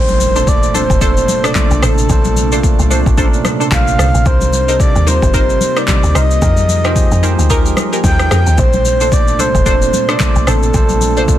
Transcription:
Already playing: log drum bass A#1, tine electric piano A#2 A3 D4 C5, ambient pad C3 C4 D4, soft synth lead C5, impact
0.08 high conga, shaker
0.20 high conga, shaker
0.36 tine electric piano A#2 A3 D4 A4, synth stab D4 A4 C5, shaker
0.47 soft synth lead D5, kick, shaker
0.63 log drum bass C2, shaker
0.74 tine electric piano A#2 A3 D4 A4, synth stab D4 A4 C5, soft synth lead C5, high conga, shaker
0.90 log drum bass F1, kick, shaker
1.01 tine electric piano A#2 A3 D4 A4, synth stab D4 A4 C5, soft synth lead C5, kick, shaker
1.17 shaker
1.28 high conga, shaker
1.44 synth stab D4 A4 C5, soft synth lead D5, cross-stick, shaker
1.55 tine electric piano A#2 A3 D4 C5, kick, clap, high conga, low conga, shaker
1.71 log drum bass A#1, shaker
1.82 log drum bass A1, synth stab D4 A4 C5, soft synth lead A4, cross-stick, low conga, shaker
1.98 shaker
2.09 log drum bass A#1, tine electric piano A#2 A3 D4 C5, kick, low conga, shaker
2.24 high conga, shaker
2.36 high conga, shaker
2.52 tine electric piano A#2 A3 D4 F4, synth stab D4 A4 C5, shaker
2.63 kick, shaker
2.79 log drum bass C2, shaker
2.90 tine electric piano A#2 A3 D4 D5, synth stab D4 A4 C5, high conga, shaker
3.06 log drum bass A1, kick, shaker
3.17 tine electric piano A#2 C#4 A4 A#4, synth stab D4 A4 C5, kick, shaker
3.25 tine electric piano D4
3.34 shaker
3.45 cross-stick, high conga, shaker
3.60 synth stab D4 A4 C5, shaker
3.72 log drum bass A#1, tine electric piano A#2 A3 D4 C5, soft synth lead F5, kick, clap, high conga, low conga, shaker
3.88 shaker
3.98 log drum bass C2, synth stab D4 A4 C5, cross-stick, low conga, shaker
4.14 log drum bass A#1, shaker
4.26 log drum bass C2, tine electric piano C3 G3 D#4 A#4, ambient pad A#3 D#4, soft synth lead C5, kick, low conga, shaker
4.41 high conga, shaker
4.53 high conga, shaker
4.68 tine electric piano C3 G3 D#4 A4, synth stab D#4 A#4 C5, shaker
4.80 soft synth lead D5, kick, shaker
4.96 log drum bass D#2, shaker
5.06 tine electric piano C3 G3 D#4 F4, synth stab D#4 A#4 C5, soft synth lead C5, high conga, shaker
5.22 log drum bass G1, kick, shaker
5.33 tine electric piano C3 G3 D#4 A#4, synth stab D#4 A#4 C5, soft synth lead C5, kick, shaker
5.50 shaker
5.61 high conga, shaker
5.76 synth stab D#4 A#4 C5, soft synth lead D5, cross-stick, shaker
5.88 tine electric piano C3 G3 D#4 C5, kick, clap, high conga, low conga, shaker
6.04 log drum bass D2, shaker
6.15 log drum bass C2, synth stab D#4 A#4 C5, soft synth lead D#5, cross-stick, low conga, shaker
6.31 shaker
6.42 log drum bass F2, tine electric piano F3 D#4 G4 G#4 A#4, ambient pad G#3 D#4 G5, kick, low conga, shaker
6.57 high conga, shaker
6.69 high conga, shaker
6.84 tine electric piano F3 D#4 G4 G#4 C5, synth stab D#4 G4 G#4 A#4, cross-stick, shaker
6.96 kick, shaker
7.12 log drum bass F2, shaker
7.23 tine electric piano F3 D#4 G4 G#4 C5, synth stab D#4 G4 G#4 A#4, high conga, shaker
7.39 log drum bass D2, shaker
7.50 tine electric piano F3 D#4 G4 G#4 A#4, synth stab D#4 G4 G#4 A#4, kick, shaker
7.66 shaker
7.77 cross-stick, high conga, shaker
7.92 synth stab D#4 G4 G#4 A#4, shaker
8.04 log drum bass D#2, tine electric piano F3 D#4 G4 G#4 A4, soft synth lead G5, kick, high conga, low conga, shaker
8.12 tine electric piano A#4
8.19 cross-stick, shaker
8.31 log drum bass F2, synth stab D#4 G4 G#4 A#4, cross-stick, low conga, shaker
8.47 log drum bass D#2, shaker
8.58 log drum bass A#1, tine electric piano A#2 A3 D4 C5, ambient pad C3 C4 D4, soft synth lead C5, kick, low conga, shaker
8.73 high conga, shaker
8.85 high conga, shaker
9.01 tine electric piano A#2 A3 D4 C5, synth stab D4 A4 C5, shaker
9.12 soft synth lead D5, kick, shaker
9.28 log drum bass C2, shaker
9.39 tine electric piano A#2 A3 D4 C5, synth stab D4 A4 C5, soft synth lead C5, high conga, shaker
9.55 log drum bass F1, kick, shaker
9.66 tine electric piano A#2 A3 D4 C5, synth stab D4 A4 C5, soft synth lead C5, kick, shaker
9.82 shaker
9.93 high conga, shaker
10.09 synth stab D4 A4 C5, soft synth lead D5, cross-stick, shaker
10.20 tine electric piano A#2 A3 D4 C5, kick, clap, high conga, low conga, shaker
10.36 log drum bass A#1, shaker
10.47 log drum bass A1, synth stab D4 A4 C5, soft synth lead A4, cross-stick, low conga, shaker
10.63 shaker
10.74 log drum bass A#1, tine electric piano A#2 A3 D4 C5, kick, low conga, shaker
10.89 high conga, shaker
11.01 high conga, shaker
11.17 tine electric piano A#2 A3 D4 F4, synth stab D4 A4 C5, shaker
11.28 kick, shaker

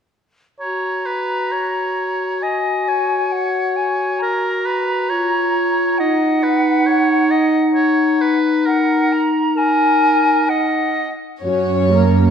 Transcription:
0.60 clarinet F#4, oboe C#5, flute A#5
1.06 oboe B4
1.52 oboe C#5
2.41 oboe D#5, flute G#5
2.88 oboe C#5
3.32 flute F#5
3.76 flute G#5
4.19 oboe A#4, flute A#5
4.66 oboe B4
5.09 clarinet F4, oboe C#5
5.98 clarinet D#4, oboe D#5, flute F#5
6.43 oboe B4
6.86 oboe C#5
7.30 oboe D#5
7.75 oboe C#5
8.21 oboe B4
8.66 oboe A#4, flute F#5
9.12 flute A#5
9.57 oboe A#4, flute G#5
10.49 oboe D#5, flute F#5
11.42 cello section F#2, viola section C#4 F#4, violin section C#5
11.92 viola section A#3 A#4

